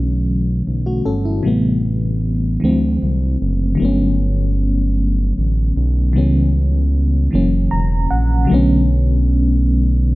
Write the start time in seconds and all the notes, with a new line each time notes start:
Already playing: B1 D3 E3 F#3 A3 C#4
0.67 B1
0.86 A3 F#4
1.05 G1 C#4 A4
1.25 E4
1.43 A1 C3 E3 G3 A3
1.47 B3
2.60 D2 D3 E3 F3 A3
2.65 C4
2.69 F#3
3.02 C2
3.42 F#1
3.75 D3 F#3
3.80 G1 A3 B3
3.85 C#4
5.38 A1
5.77 B1
6.13 C#2 C#3 D#3 G3 B3
6.18 E3 C#4
7.31 F#1 C#3 E3 F#3 A#3
7.35 C#4
7.71 E1 A#5
8.10 A#1 F#5
8.45 C#3 F#3
8.49 B1 D3 A3 B3
8.54 C#4